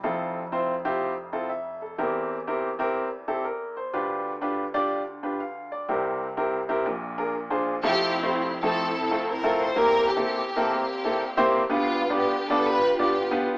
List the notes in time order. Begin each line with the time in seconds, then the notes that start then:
0.03 F1 F2 C4 E4 F4 A4
0.52 C4 E4 F4 C5
0.85 C4 E4 F4 G4
1.33 C4 E4 F4 A4
1.49 E5
1.82 A4
1.98 E2 E3 C4 E4 G4 A#4
2.47 C4 E4 G4 A#4
2.79 C4 E4 G4 A#4
3.28 C4 E4 G4 A4
3.44 A#4
3.77 C5
3.94 D2 D3 D4 F4 G4 B4
4.41 D4 F4 G4 B4
4.74 D4 F4 G4 D5
5.23 D4 F4 G4 B4
5.40 F5
5.72 D5
5.89 C2 C3 C4 E4 G4 A#4
6.37 C4 E4 G4 A#4
6.69 C4 E4 G4 A#4
6.86 A#1 A#2
7.18 D4 F4 G#4 A#4
7.50 D4 F4 G#4 C5
7.83 F1 F2 A3 C4 E4 F4 G4 A4
8.23 A3 C4 E4 F4 C5
8.63 F3 A3 C4 E4 A4
9.11 A3 C4 E4 F4 A4
9.29 A#4
9.43 A3 C4 E4 F4 A4
9.61 C5
9.76 E2 E3 A#3 C4 E4 G4 A#4
10.08 G4
10.16 A#3 C4 E4 G4 A4
10.25 G4
10.56 A#3 C4 E4 G4 A4 A#4
10.74 A#3 C4 G4
11.05 A#3 C4 E4 G4 A4
11.37 A#3 C4 E4 G4 C5
11.69 D2 D3 B3 D4 F4 G4 B4
12.10 B3 D4 F4 G4 D5
12.17 G4
12.49 B3 D4 F4 G4 A4 D5
12.67 F4 G4 B4
12.99 B3 D4 F4 G4 D5
13.31 B3 D4 F4 G4 B4